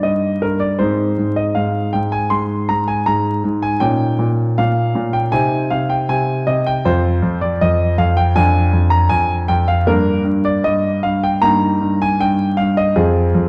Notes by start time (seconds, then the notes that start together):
Already playing: A#3 D#4
0.03 G2 D#5
0.42 G2 A#4
0.60 D5
0.79 G#2 C4 D#4 C5
1.18 G#2
1.36 D#5
1.55 G#2 F5
1.93 G#2 G5
2.12 G#5
2.30 G#2 C6
2.69 G#2 A#5
2.88 G#5
3.06 G#2 A#5
3.44 G#2
3.62 G#5
3.80 A#2 C#4 D#4 G5
4.19 A#2
4.58 A#2 F5
4.95 A#2
5.13 G5
5.32 C3 C4 D#4 G#5
5.70 C3 F5
5.90 G5
6.09 C3 G#5
6.47 C3 D#5
6.66 G5
6.85 F2 C4 F4 C5
7.22 F2
7.41 D5
7.61 F2 D#5
7.98 F2 F5
8.17 G5
8.35 F2 D4 F4 G#5
8.73 F2
8.90 A#5
9.09 F2 G#5
9.48 F2 G5
9.68 F5
9.87 G2 A#3 D4 A#4
10.24 G2
10.45 D5
10.64 G2 D#5
11.03 G2 F5
11.24 G5
11.42 G2 A#3 D#4 A#5
11.81 G2
12.02 G#5
12.20 G2 G5
12.57 G2 F5
12.77 D#5
12.96 F2 C4 F4 G#4
13.35 F2